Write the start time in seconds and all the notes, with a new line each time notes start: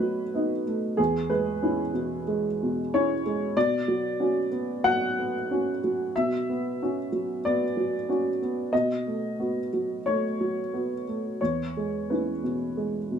Already playing: B2 A3 B3 D#4 B4 C#5
0.00 F#3
0.34 B3 D#4
0.67 A3
0.97 E2 G#4
1.30 G#3 B4
1.62 C#4 E4
1.93 B2
2.28 G#3
2.63 B2
2.94 C#4 E4 C#5
3.26 G#3
3.56 B2 D5
3.88 F#3
4.20 C#4 F#4
4.51 B3
4.84 F#3 F#5
5.19 B3
5.51 C#4 F#4
5.84 F#3
6.16 B2 E5
6.49 B3
6.82 C#4 F#4
7.12 F#3
7.45 B3 D5
7.77 F#3
8.09 C#4 F#4
8.42 B3
8.73 B2 D#5
9.07 A3
9.40 B3 F#4
9.73 F#3
10.06 A3 C#5
10.41 F#3
10.73 B3 F#4
11.08 A3
11.41 E2 C#5
11.77 G#3
12.10 C#4 E4 B4
12.43 B2
12.77 G#3
13.11 B2